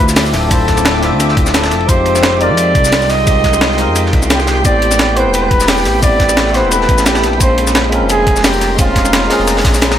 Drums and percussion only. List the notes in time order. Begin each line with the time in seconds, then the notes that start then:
0.08 snare, shaker
0.16 snare, closed hi-hat, open hi-hat, shaker
0.26 snare, shaker
0.33 snare, closed hi-hat, ride, shaker
0.51 kick, closed hi-hat, ride, shaker
0.68 kick, snare, closed hi-hat, ride
0.77 snare, ride, shaker
0.85 snare, closed hi-hat, ride
0.94 snare
1.03 snare, closed hi-hat, ride
1.20 snare, closed hi-hat, ride, shaker
1.29 snare
1.37 kick, closed hi-hat, ride
1.46 snare, shaker
1.54 snare, closed hi-hat, ride, shaker
1.63 snare, ride, shaker
1.71 snare, closed hi-hat, ride, shaker
1.80 ride
1.88 kick, closed hi-hat, ride, shaker
2.05 closed hi-hat, ride
2.15 snare, shaker
2.23 snare, closed hi-hat, ride
2.32 ride
2.41 closed hi-hat, ride
2.57 closed hi-hat, ride, shaker
2.75 kick, closed hi-hat, ride
2.85 snare, shaker
2.92 snare, closed hi-hat, open hi-hat, shaker
3.01 snare, shaker
3.09 snare, closed hi-hat, ride, shaker
3.27 kick, closed hi-hat, ride, shaker
3.44 kick, snare, closed hi-hat, ride
3.53 snare, ride, shaker
3.61 snare, closed hi-hat, ride
3.71 snare
3.78 snare, closed hi-hat, ride, shaker
3.96 snare, closed hi-hat, ride, shaker
4.06 snare
4.13 kick, closed hi-hat, ride
4.22 snare, shaker
4.30 snare, closed hi-hat, ride, shaker
4.40 snare, shaker
4.47 snare, closed hi-hat, ride, shaker
4.57 ride
4.65 kick, closed hi-hat, ride, shaker
4.82 closed hi-hat, ride
4.91 snare, shaker
4.99 snare, closed hi-hat, ride
5.09 ride
5.17 closed hi-hat, ride
5.34 closed hi-hat, ride, shaker
5.51 kick, closed hi-hat, ride
5.60 snare, shaker
5.68 snare, closed hi-hat, open hi-hat, shaker
5.78 snare, shaker
5.85 snare, closed hi-hat, ride, shaker
6.03 kick, closed hi-hat, ride, shaker
6.20 kick, snare, closed hi-hat, ride
6.29 snare, ride, shaker
6.37 snare, closed hi-hat, ride
6.46 snare
6.54 snare, closed hi-hat, ride
6.72 snare, closed hi-hat, ride, shaker
6.81 snare
6.88 kick, closed hi-hat, ride
6.98 snare, shaker
7.06 snare, closed hi-hat, ride, shaker
7.15 snare, ride, shaker
7.23 snare, closed hi-hat, ride, shaker
7.33 ride
7.40 kick, closed hi-hat, ride, shaker
7.58 closed hi-hat, ride
7.67 snare, shaker
7.75 snare, closed hi-hat, ride
7.84 ride
7.92 closed hi-hat, ride
8.09 closed hi-hat, ride, shaker
8.27 kick, closed hi-hat, ride
8.36 snare, shaker
8.44 snare, closed hi-hat, open hi-hat, shaker
8.53 snare, shaker
8.61 snare, closed hi-hat, ride, shaker
8.78 kick, closed hi-hat, ride, shaker
8.96 kick, snare, closed hi-hat, ride
9.05 snare, ride, shaker
9.13 snare, closed hi-hat, ride
9.23 snare
9.30 snare, closed hi-hat, open hi-hat
9.39 snare
9.47 snare, closed hi-hat, ride, shaker
9.57 snare, open hi-hat
9.65 kick, snare, closed hi-hat, ride, shaker
9.74 snare, shaker
9.81 snare, closed hi-hat, ride, shaker
9.91 snare, ride, shaker